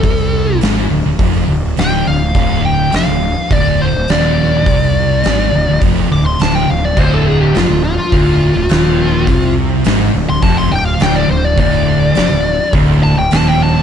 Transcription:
<<
  \new Staff \with { instrumentName = "Lead electric guitar" } { \time 4/4 \key d \minor \tempo 4 = 104 a'4 r2 g''8 f''8~ | f''8 g''8 f''4 d''8 c''8 d''4~ | d''2 r8 d'''16 c'''16 a''16 g''16 f''16 d''16 | c''16 a'16 gis'16 g'16 f'8 f'2~ f'8~ |
f'8 r4 r16 c'''16 a''16 c'''16 g''16 f''16 g''16 d''16 c''16 d''16 | d''2 r8 a''16 g''16 a''16 g''16 a''8 | }
  \new Staff \with { instrumentName = "Distorted electric guitar" } { \clef bass \time 4/4 \key d \minor c4 gis,8 d,16 d,16 f,8 d,8 d,8 d,8 | d,4 f,16 d,8 r16 d,8. d,16 ees,4 | c4 gis,8 d,16 d,16 f,8 d,8 d,8 d,8 | d,4 f,16 d,8 r16 d,8. d,16 ees,4 |
c4 gis,8 d,16 d,16 f,8 d,8 d,8 d,8 | d,4 f,16 d,8 r16 d,8. d,16 ees,4 | }
  \new Staff \with { instrumentName = "Distorted electric guitar" } { \clef bass \time 4/4 \key d \minor c4 gis,8 d,16 d,16 f,8 d,8 d,8 d,8 | d,4 f,16 d,8 r16 d,8. d,16 ees,4 | c4 gis,8 d,16 d,16 f,8 d,8 d,8 d,8 | d,4 f,16 d,8 r16 d,8. d,16 ees,4 |
c4 gis,8 d,16 d,16 f,8 d,8 d,8 d,8 | d,4 f,16 d,8 r16 d,8. d,16 ees,4 | }
  \new Staff \with { instrumentName = "Distorted electric guitar" } { \clef bass \time 4/4 \key d \minor r1 | r1 | r1 | d,4 f,16 d,8 r16 d,8. d,16 ees,4 |
c4 gis,8 d,16 d,16 f,8 d,8 d,8 d,8 | d,4 f,16 d,8 r16 d,8. d,16 ees,4 | }
  \new Staff \with { instrumentName = "Fingered electric bass" } { \clef bass \time 4/4 \key d \minor c,4 gis,,8 d,,16 d,,16 f,,8 d,,8 d,,8 d,,8 | d,,4 f,,16 d,,8 r16 d,,8. d,,16 ees,,4 | c,4 gis,,8 d,,16 d,,16 f,,8 d,,8 d,,8 d,,8 | d,,4 f,,16 d,,8 r16 d,,8. d,,16 ees,,4 |
c,4 gis,,8 d,,16 d,,16 f,,8 d,,8 d,,8 d,,8 | d,,4 f,,16 d,,8 r16 d,,8. d,,16 ees,,4 | }
  \new DrumStaff \with { instrumentName = "Drums" } \drummode { \time 4/4 <hho bd>4 <hho sn>4 <hho bd>4 <hho sn>4 | <hho bd>4 <hho sn>4 <hho bd>4 <hho sn>4 | <hho bd>4 <hho sn>4 <hho bd>4 <hho sn>4 | <cymc bd>4 <hho sn>4 <hho bd>4 <hho sn>4 |
<hho bd>4 <hho sn>4 <hho bd>4 <hho sn>4 | <hho bd>4 <hho sn>4 <hho bd>4 <hho sn>4 | }
>>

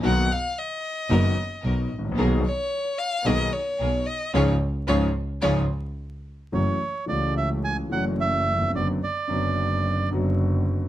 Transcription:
<<
  \new Staff \with { instrumentName = "Bandoneon" } { \time 4/4 \key cis \mixolydian \tempo 4 = 110 r1 | r1 | r1 | \key fis \minor cis''4 d''8 e''8 gis''8 fis''8 e''4 |
d''8 d''2 r4. | }
  \new Staff \with { instrumentName = "Violin" } { \time 4/4 \key cis \mixolydian fis''8 eis''8 dis''2~ dis''8 r8 | r8 cis''4 eis''8 dis''8 cis''4 dis''8 | cis''8 r8 cis''8 r8 cis''8 r4. | \key fis \minor r1 |
r1 | }
  \new Staff \with { instrumentName = "String section" } { \time 4/4 \key cis \mixolydian <b dis' ais'>8 r4. <b dis' ais'>8 r8 <b dis' ais'>8 r8 | <b gis' ais'>8 r4. <b gis' ais'>8 r8 <b gis' ais'>8 r8 | <cis' eis' gis'>8 r8 <cis' eis' gis'>8 r8 <cis' eis' gis'>8 r4. | \key fis \minor r1 |
r1 | }
  \new Staff \with { instrumentName = "Grand piano" } { \clef bass \time 4/4 \key cis \mixolydian << { <b,, b, dis ais b fis'>8 r4. <fis,, fis, dis ais b fis'>8 r8 <b,, b,>8 r8 | <b,, b, dis ais b gis'>8 r4. <b,, b, dis ais b gis'>8 r8 <b,, b,>8 r8 | <gis, cis eis>8 r8 <gis, cis eis>8 r8 <gis, cis eis>8 r4. | \key fis \minor <fis, e fis a cis' fis'>8 r8 <cis, cis e a cis' fis'>4. <fis, e fis a cis' fis'>4. |
<fis, d fis b fis'>8 r8 <fis, d fis b fis'>4. <fis, d fis b fis'>4. | } \\ { r2. r8 r32 gis,,32 a,,32 ais,,32 | r1 | r1 | r2. r8 r32 dis,32 e,32 eis,32 |
r1 | } >> }
  \new Staff \with { instrumentName = "Double bass" } { \clef bass \time 4/4 \key cis \mixolydian b,,8 r4. fis,,8 r8 b,,8 a,,8 | b,,8 r4. b,,8 r8 b,,8 r8 | cis,8 r8 cis,8 r8 cis,8 r4. | \key fis \minor fis,,8 r8 cis,4. fis,,4. |
fis,,8 r8 fis,,4. fis,,4. | }
>>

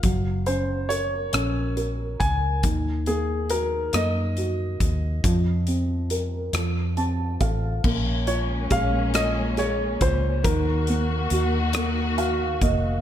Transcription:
<<
  \new Staff \with { instrumentName = "Grand piano" } { \time 6/8 \key bes \minor \tempo 4. = 46 r8 c''8 des''4 r8 aes''8 | r8 aes'8 bes'8 ees''4.~ | ees''2 r4 | r8 des''8 f''8 ees''8 des''8 c''8 |
bes'2~ bes'8 r8 | }
  \new Staff \with { instrumentName = "Felt piano" } { \time 6/8 \key bes \minor ges8 des'8 bes'8 des'8 bes'4 | ees8 bes8 ges'8 bes8 ges'4 | f8 c'8 bes'8 f8 <c' a''>8 <a' f''>8 | bes8 f'8 aes'8 f'8 aes'8 f'8 |
ees8 bes8 ges'8 bes8 <ges' f''>8 <bes ees''>8 | }
  \new Staff \with { instrumentName = "String section" } { \time 6/8 \key bes \minor r2. | r2. | r2. | <aes bes des'>2. |
<ees bes ges'>2. | }
  \new Staff \with { instrumentName = "Fingered electric bass" } { \clef bass \time 6/8 \key bes \minor ges,,4. bes,,4 des,8 | ees,4. ges,4 ees,8 | f,4. f,4 a,,8 | bes,,4 bes,,4. des,8 |
ees,4 ees,4. f,,8 | }
  \new DrumStaff \with { instrumentName = "Drums" } \drummode { \time 6/8 <hh bd>8 hh8 hh8 <hh ss>8 hh8 <hh bd>8 | <hh bd>8 hh8 hh8 <hh ss>8 hh8 <hh bd>8 | <hh bd>8 hh8 hh8 <hh ss>8 hh8 <hh bd>8 | <cymc bd>8 hh8 <hh bd>8 <hh ss>8 <hh ss>8 <hh bd>8 |
<hh bd>8 hh8 hh8 <hh ss>8 hh8 <hh bd>8 | }
>>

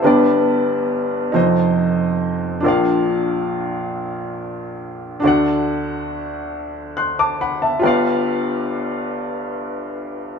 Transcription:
\new Staff \with { instrumentName = "Upright piano" } { \time 6/8 \key g \mixolydian \tempo 4. = 46 << { <e'' a''>16 r2 r8. | r2. | r2 <c''' fis'''>16 <a'' d'''>16 <fis'' b''>16 <e'' a''>16~ | <e'' a''>16 r2 r8. | } \\ { <g,, g, b d' g' b' d''>4. <f,, f, ees' f' a' c'' ees''>4. | <bes,, bes, d' f' bes' d'' f''>2. | <d, d d' fis' a' d'' fis''>2. | <g,, g, f' g' b' d'' f''>2. | } >> }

